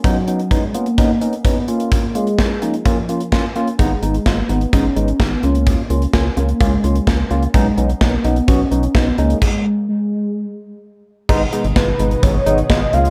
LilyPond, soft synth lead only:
\new Staff \with { instrumentName = "Soft synth lead" } { \time 4/4 \key gis \dorian \tempo 4 = 128 fis4 gis8 ais4. b8 ais8~ | ais8 gis4 eis2 r8 | gis4 ais8 b8 cis'4 b8 cis'8~ | cis'4 r8 ais8 gis4. r8 |
gis4 ais8 b8 cis'4 b16 b16 ais8 | gis4 gis2 r4 | r4 b'4 cis''4 dis''8 eis''8 | }